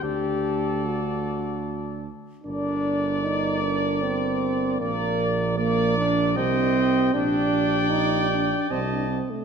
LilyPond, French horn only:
\new Staff \with { instrumentName = "French horn" } { \time 3/4 \key g \minor \tempo 4 = 76 g'4 fis'4. r8 | bes'2. | bes'4 bes'4 g'4 | g'2 g'8 r8 | }